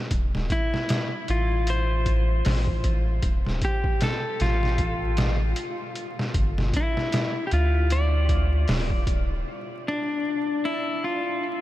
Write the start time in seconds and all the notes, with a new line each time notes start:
0.11 D1, kick, closed hi-hat
0.34 D1, snare
0.50 E4, kick, closed hi-hat
0.74 snare
0.89 snare, closed hi-hat
1.28 A1 F4, closed hi-hat
1.67 C5, closed hi-hat
2.06 kick, closed hi-hat
2.45 A1, snare, open hi-hat
2.67 kick
2.84 kick, closed hi-hat
3.23 D1, kick, closed hi-hat
3.46 D1, snare
3.62 G4, kick, closed hi-hat
3.84 kick
4.01 A4, snare, closed hi-hat
4.40 A1 F4, snare, closed hi-hat
4.63 snare
4.78 kick, closed hi-hat
5.17 snare, closed hi-hat
5.56 closed hi-hat
5.95 closed hi-hat
6.19 snare
6.34 G1, kick, closed hi-hat
6.58 G1, snare
6.73 E4, kick, closed hi-hat
6.97 snare
7.12 snare, closed hi-hat
7.47 G4
7.51 D2 F4, closed hi-hat
7.90 D5, closed hi-hat
8.29 kick, closed hi-hat
8.68 D1, snare, open hi-hat
8.90 kick
9.07 kick, closed hi-hat
9.88 D4
10.65 E4
11.04 F4